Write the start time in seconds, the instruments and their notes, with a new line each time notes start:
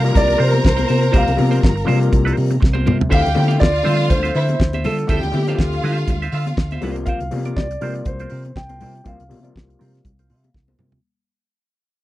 Already playing: fingered electric bass C3, violin section A#4 A#5, grand piano F5
0.03 clav C3 F3 G3 A#3 F4, muted clean electric guitar stroke, snare, closed hi-hat
0.13 fingered electric bass C2, grand piano D5, muted clean electric guitar stroke, kick, closed hi-hat, muted conga, low conga
0.28 muted clean electric guitar stroke, closed hi-hat, muted conga
0.38 fingered electric bass C3, clean electric guitar F4 A#4 C5, grand piano C5, open hi-hat
0.52 muted clean electric guitar stroke, closed hi-hat, high conga
0.63 fingered electric bass C2, grand piano C5, muted clean electric guitar stroke, kick, snare, muted conga
0.77 clean electric guitar F4 A#4 C5, closed hi-hat, muted conga, high conga
0.87 fingered electric bass C3, clean electric guitar F4 A#4 C5, grand piano C5, open hi-hat, high conga
1.01 muted clean electric guitar stroke, closed hi-hat
1.12 fingered electric bass C2, clav C3 F3 G3 A#3 G4, clean electric guitar F4 A#4 C5, kick, closed hi-hat
1.16 grand piano F5, muted conga
1.27 fingered electric bass C2, closed hi-hat, muted conga
1.36 clav C3 F3 G3 A#3 F4, fingered electric bass C3, muted clean electric guitar stroke, open hi-hat, high conga
1.51 clean electric guitar F4 A#4 C5, closed hi-hat
1.61 fingered electric bass G1, muted clean electric guitar stroke, kick, snare, muted conga
1.76 muted clean electric guitar stroke, closed hi-hat
1.85 clav C3 F3 G3 A#3 F4, clean electric guitar F4 A#4 C5, open hi-hat, low conga
1.89 fingered electric bass C3
2.00 muted clean electric guitar stroke, closed hi-hat
2.12 fingered electric bass C2, muted clean electric guitar stroke, kick, closed hi-hat, muted conga, low conga
2.25 clean electric guitar F4 A#4 C5, closed hi-hat
2.36 fingered electric bass C3, muted clean electric guitar stroke, open hi-hat
2.51 muted clean electric guitar stroke, closed hi-hat, high conga
2.60 fingered electric bass C2, muted clean electric guitar stroke, kick, snare, muted conga
2.73 clean electric guitar F4 A#4 C5, muted conga, high conga
2.86 fingered electric bass C3, clean electric guitar F4 A#4 C5, mid tom, high conga, low conga
2.99 muted clean electric guitar stroke, floor tom
3.09 fingered electric bass D2, clav D3 F3 A3 C4 E4, clean electric guitar F4 C5 E5, violin section G4 G5, grand piano F5, kick, crash, muted conga
3.23 fingered electric bass D2, muted clean electric guitar stroke, closed hi-hat, muted conga
3.34 clav D3 F3 A3 C4 E4, fingered electric bass D3, muted clean electric guitar stroke, open hi-hat, high conga
3.48 clean electric guitar F4 C5 F5, closed hi-hat
3.60 fingered electric bass D2, violin section F4 F5, grand piano D5, kick, snare, muted conga
3.73 muted clean electric guitar stroke, closed hi-hat
3.83 clav D3 F3 A3 C4 F4, fingered electric bass D3, clean electric guitar F4 C5 E5, open hi-hat, low conga
4.01 snare, closed hi-hat
4.09 fingered electric bass D2, grand piano C5, muted clean electric guitar stroke, kick, closed hi-hat, muted conga, low conga
4.23 clean electric guitar F4 C5 E5, closed hi-hat, muted conga
4.34 fingered electric bass D3, violin section E4 E5, clean electric guitar F4 C5 E5, grand piano C5, open hi-hat
4.49 muted clean electric guitar stroke, closed hi-hat, high conga
4.60 fingered electric bass D2, muted clean electric guitar stroke, kick, snare, muted conga
4.73 clean electric guitar F4 C5 E5, closed hi-hat, muted conga, high conga
4.84 fingered electric bass D3, clean electric guitar F4 C5 E5, grand piano A4, open hi-hat, low conga
4.99 muted clean electric guitar stroke, closed hi-hat
5.07 fingered electric bass D2, clav D3 F3 A3 C4 E4, clean electric guitar F4 C5 E5, violin section G4 G5, grand piano A4, kick, closed hi-hat
5.23 fingered electric bass D2, muted clean electric guitar stroke, closed hi-hat, muted conga
5.32 clav D3 F3 A3 C4 E4, fingered electric bass D3, grand piano G4, muted clean electric guitar stroke, open hi-hat, high conga
5.47 clav D3 F3 A3 C4 D#4, clean electric guitar F4 C5 F5, closed hi-hat
5.54 clav F4
5.58 fingered electric bass D2, violin section F4 F5, kick, snare
5.72 muted clean electric guitar stroke, closed hi-hat, muted conga
5.84 fingered electric bass D3, clean electric guitar F4 C5 E5, open hi-hat, low conga
5.98 muted clean electric guitar stroke, closed hi-hat
6.08 fingered electric bass D2, muted clean electric guitar stroke, kick, closed hi-hat, muted conga, low conga
6.22 clean electric guitar F4 C5 E5, closed hi-hat, muted conga
6.32 fingered electric bass D3, violin section F4 F5, clean electric guitar F4 C5 E5, open hi-hat
6.47 muted clean electric guitar stroke, closed hi-hat, high conga
6.57 fingered electric bass D2, muted clean electric guitar stroke, kick, snare, muted conga
6.71 clean electric guitar F4 C5 E5, closed hi-hat, high conga
6.81 fingered electric bass C2, clav C3 F3 G3 A#3 F4, clean electric guitar F4 A#4 C5, open hi-hat, low conga
6.96 muted clean electric guitar stroke, closed hi-hat
7.06 clean electric guitar F4 A#4 C5, grand piano F5, kick, closed hi-hat, muted conga
7.20 fingered electric bass C2, muted clean electric guitar stroke, closed hi-hat, muted conga
7.31 clav C3 F3 G3 A#3 F4, fingered electric bass C3, muted clean electric guitar stroke, open hi-hat, high conga
7.45 clean electric guitar F4 A#4 D5, closed hi-hat
7.56 fingered electric bass C2, grand piano D5, kick, snare
7.71 muted clean electric guitar stroke, closed hi-hat
7.81 clav C3 F3 G3 A#3 F4, fingered electric bass C3, clean electric guitar F4 A#4 C5, open hi-hat, low conga
7.95 muted clean electric guitar stroke, closed hi-hat
8.05 fingered electric bass C2, grand piano C5, muted clean electric guitar stroke, kick, closed hi-hat, muted conga, low conga
8.19 clean electric guitar F4 A#4 C5, closed hi-hat, muted conga
8.30 fingered electric bass C3, clean electric guitar F4 A#4 C5, open hi-hat
8.45 muted clean electric guitar stroke, closed hi-hat, high conga
8.56 fingered electric bass C2, grand piano G5, muted clean electric guitar stroke, kick, snare
8.69 clean electric guitar F4 A#4 C5, closed hi-hat, high conga
8.80 fingered electric bass C3, clean electric guitar F4 A#4 C5, open hi-hat, low conga
8.95 muted clean electric guitar stroke, closed hi-hat
9.04 fingered electric bass C2, clav C3 F3 G3 A#3 F4, clean electric guitar F4 A#4 C5, grand piano F5, kick, closed hi-hat, muted conga
9.20 fingered electric bass C2, muted clean electric guitar stroke, closed hi-hat, muted conga
9.29 clav C3 F3 G3 A#3 F4, fingered electric bass C3, muted clean electric guitar stroke, open hi-hat, high conga
9.42 clav C3 F3 G3 A#3 F4, clean electric guitar F4 A#4 D5, closed hi-hat
9.56 fingered electric bass C2, kick, snare
9.69 muted clean electric guitar stroke, closed hi-hat
9.79 fingered electric bass C3, clean electric guitar F4 A#4 C5, open hi-hat, low conga
9.94 muted clean electric guitar stroke, snare, closed hi-hat
10.05 fingered electric bass C2, muted clean electric guitar stroke, kick, closed hi-hat, low conga
10.19 clean electric guitar F4 A#4 C5, closed hi-hat, muted conga
10.30 fingered electric bass C3, clean electric guitar F4 C5, open hi-hat
10.44 closed hi-hat, high conga
10.54 fingered electric bass C2, muted clean electric guitar stroke, kick, snare, muted conga
10.68 clean electric guitar F4 A#4 C5, muted conga, high conga
10.79 fingered electric bass C3, clean electric guitar F4 A#4 C5, mid tom, high conga, low conga
10.92 muted clean electric guitar stroke, floor tom